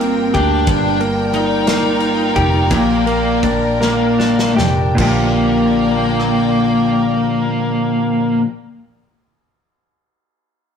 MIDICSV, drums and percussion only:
0, 0, Header, 1, 2, 480
1, 0, Start_track
1, 0, Key_signature, -2, "major"
1, 0, Tempo, 665188
1, 489, Time_signature, 6, 3, 24, 8
1, 1454, Tempo, 708383
1, 2414, Tempo, 756620
1, 2894, Tempo, 807537
1, 6804, End_track
2, 0, Start_track
2, 0, Title_t, "Drums"
2, 7, Note_on_c, 9, 51, 42
2, 79, Note_off_c, 9, 51, 0
2, 245, Note_on_c, 9, 51, 37
2, 250, Note_on_c, 9, 36, 92
2, 317, Note_off_c, 9, 51, 0
2, 322, Note_off_c, 9, 36, 0
2, 483, Note_on_c, 9, 51, 66
2, 485, Note_on_c, 9, 36, 120
2, 555, Note_off_c, 9, 51, 0
2, 558, Note_off_c, 9, 36, 0
2, 726, Note_on_c, 9, 51, 38
2, 798, Note_off_c, 9, 51, 0
2, 964, Note_on_c, 9, 51, 47
2, 1037, Note_off_c, 9, 51, 0
2, 1206, Note_on_c, 9, 51, 73
2, 1211, Note_on_c, 9, 38, 102
2, 1279, Note_off_c, 9, 51, 0
2, 1283, Note_off_c, 9, 38, 0
2, 1446, Note_on_c, 9, 51, 40
2, 1514, Note_off_c, 9, 51, 0
2, 1687, Note_on_c, 9, 51, 38
2, 1688, Note_on_c, 9, 36, 90
2, 1755, Note_off_c, 9, 51, 0
2, 1756, Note_off_c, 9, 36, 0
2, 1922, Note_on_c, 9, 51, 73
2, 1924, Note_on_c, 9, 36, 116
2, 1990, Note_off_c, 9, 51, 0
2, 1992, Note_off_c, 9, 36, 0
2, 2169, Note_on_c, 9, 51, 39
2, 2237, Note_off_c, 9, 51, 0
2, 2413, Note_on_c, 9, 36, 91
2, 2414, Note_on_c, 9, 51, 49
2, 2477, Note_off_c, 9, 36, 0
2, 2477, Note_off_c, 9, 51, 0
2, 2659, Note_on_c, 9, 38, 63
2, 2723, Note_off_c, 9, 38, 0
2, 2901, Note_on_c, 9, 38, 84
2, 2960, Note_off_c, 9, 38, 0
2, 3015, Note_on_c, 9, 38, 88
2, 3074, Note_off_c, 9, 38, 0
2, 3130, Note_on_c, 9, 38, 98
2, 3189, Note_off_c, 9, 38, 0
2, 3365, Note_on_c, 9, 49, 84
2, 3366, Note_on_c, 9, 36, 97
2, 3424, Note_off_c, 9, 49, 0
2, 3425, Note_off_c, 9, 36, 0
2, 4088, Note_on_c, 9, 37, 58
2, 4147, Note_off_c, 9, 37, 0
2, 6804, End_track
0, 0, End_of_file